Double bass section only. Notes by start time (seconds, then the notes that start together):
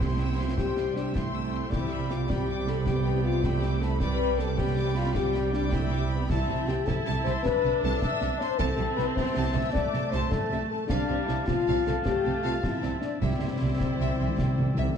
Already playing: C2
1.72 C2
6.29 C2
6.49 C2
6.68 C2
6.88 C2
7.06 C2
7.26 C2
7.45 C2
7.63 C2
7.84 C2
8.21 C2
8.59 C2
8.79 C2
8.97 C2
9.16 C2
9.35 C2
9.54 C2
9.74 C2
9.93 C2
10.13 C2
10.52 C2
10.90 C2
11.09 C2
11.30 C2
11.48 C2
11.68 C2
11.88 C2
12.06 C2
12.26 C2
12.44 C2
12.84 C2
13.22 C2
13.42 C2
13.62 C2
13.81 C2
14.00 C2
14.20 C2
14.39 C2
14.58 C2
14.78 C2